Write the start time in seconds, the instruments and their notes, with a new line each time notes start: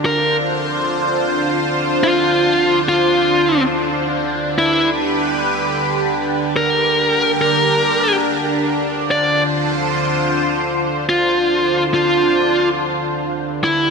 Already playing: analog synth pad D3 D4 F4 C5
0.05 lead electric guitar A#4
2.03 lead electric guitar F4
2.89 lead electric guitar F4
4.30 analog synth pad G4 B4
4.58 lead electric guitar E4
6.56 analog synth pad D4 G4 A#4, lead electric guitar A#4
7.41 lead electric guitar A#4
8.83 analog synth pad D3 F4 C5
9.11 lead electric guitar D5
11.09 analog synth pad D3 D4 F4 C5, lead electric guitar F4
11.94 lead electric guitar F4
13.35 analog synth pad D4 G4 B4
13.64 lead electric guitar E4